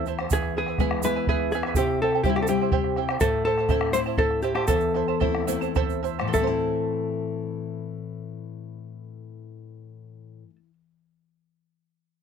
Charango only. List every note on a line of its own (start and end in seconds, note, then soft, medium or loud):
0.07 0.19 E4 medium
0.07 0.19 C5 medium
0.07 0.19 E5 medium
0.07 0.18 A5 medium
0.19 0.32 E4 soft
0.19 0.32 C5 soft
0.19 0.31 A5 medium
0.32 0.56 E4 medium
0.32 0.55 G#4 medium
0.32 0.56 B4 medium
0.32 0.55 E5 medium
0.32 0.56 G#5 medium
0.57 0.68 E4 medium
0.57 0.68 B4 medium
0.57 0.68 E5 medium
0.57 0.67 G#5 medium
0.68 0.79 E4 soft
0.68 0.79 B4 medium
0.68 0.79 G#5 medium
0.80 1.03 E4 medium
0.80 1.03 G#4 medium
0.80 1.04 B4 medium
0.80 1.03 E5 medium
0.80 1.04 G#5 medium
1.04 1.16 E4 medium
1.04 1.15 B4 medium
1.04 1.15 E5 medium
1.04 1.15 G#5 medium
1.16 1.28 E4 soft
1.16 1.28 B4 soft
1.16 1.28 G#5 medium
1.29 1.52 E4 medium
1.29 1.52 G#4 medium
1.29 1.52 B4 loud
1.29 1.52 E5 medium
1.29 1.53 G#5 medium
1.54 1.65 E4 medium
1.54 1.65 B4 medium
1.54 1.65 E5 medium
1.54 1.65 G#5 medium
1.66 1.77 E4 soft
1.66 1.77 B4 medium
1.66 1.77 G#5 medium
1.77 2.01 E4 medium
1.77 2.00 G4 medium
1.77 2.01 C5 medium
1.77 2.01 E5 medium
1.77 2.01 G5 medium
2.02 2.13 E4 medium
2.02 2.13 C5 medium
2.02 2.13 E5 medium
2.02 2.14 G5 medium
2.15 2.24 E4 soft
2.15 2.24 C5 medium
2.15 2.24 G5 medium
2.24 2.48 E4 medium
2.24 2.48 G4 medium
2.24 2.48 C5 medium
2.24 2.47 E5 medium
2.24 2.48 G5 medium
2.48 2.60 E4 medium
2.48 2.60 C5 medium
2.48 2.60 E5 medium
2.48 2.60 G5 medium
2.62 2.71 E4 soft
2.62 2.71 C5 medium
2.62 2.72 G5 medium
2.72 2.96 E4 loud
2.72 2.96 G4 medium
2.72 2.96 C5 medium
2.72 2.96 E5 medium
2.72 2.96 G5 medium
2.97 3.09 E4 medium
2.97 3.08 C5 medium
2.97 3.08 E5 medium
2.97 3.09 G5 medium
3.10 3.20 E4 medium
3.10 3.20 C5 soft
3.10 3.21 G5 medium
3.21 3.45 E4 medium
3.21 3.44 A4 medium
3.21 3.45 C5 medium
3.21 3.44 E5 medium
3.21 3.45 A5 medium
3.45 3.57 E4 medium
3.45 3.57 C5 medium
3.45 3.57 E5 medium
3.45 3.57 A5 medium
3.58 3.69 E4 medium
3.58 3.69 C5 medium
3.58 3.69 A5 medium
3.69 3.93 E4 medium
3.69 3.93 A4 medium
3.69 3.94 C5 medium
3.69 3.93 E5 medium
3.69 3.94 A5 loud
3.94 4.06 E4 medium
3.94 4.06 C5 medium
3.94 4.06 E5 medium
3.94 4.05 A5 medium
4.06 4.17 E4 soft
4.06 4.17 C5 medium
4.06 4.17 A5 medium
4.18 4.42 E4 loud
4.18 4.43 A4 medium
4.18 4.43 C5 medium
4.18 4.42 E5 medium
4.18 4.43 A5 medium
4.43 4.55 E4 medium
4.43 4.55 C5 medium
4.43 4.56 E5 medium
4.43 4.53 A5 medium
4.55 4.68 E4 soft
4.55 4.67 C5 soft
4.55 4.68 A5 medium
4.68 4.94 E4 medium
4.68 4.94 A4 medium
4.68 4.94 C5 medium
4.68 4.93 E5 medium
4.68 4.95 A5 loud
4.94 5.08 E4 medium
4.94 5.07 C5 medium
4.94 5.08 E5 medium
4.94 5.07 A5 medium
5.08 5.19 E4 medium
5.08 5.20 C5 medium
5.08 5.20 A5 medium
5.20 5.46 E4 medium
5.20 5.47 A4 medium
5.20 5.46 C5 medium
5.20 5.46 E5 medium
5.20 5.47 A5 medium
5.47 5.61 E4 medium
5.47 5.60 C5 medium
5.47 5.61 E5 medium
5.47 5.60 A5 medium
5.61 5.74 E4 medium
5.61 5.75 C5 medium
5.61 5.75 A5 medium
5.76 6.02 E4 loud
5.76 6.04 A4 loud
5.76 6.03 C5 loud
5.76 6.02 E5 medium
5.76 6.03 A5 loud
6.03 6.19 E4 medium
6.03 6.18 C5 medium
6.03 6.18 E5 medium
6.03 6.18 A5 medium
6.19 6.35 E4 medium
6.19 6.34 C5 medium
6.19 6.34 A5 medium
6.28 10.54 A4 medium
6.34 6.47 E5 medium
6.39 10.65 E4 medium
6.43 10.69 C5 medium
6.43 10.73 A5 medium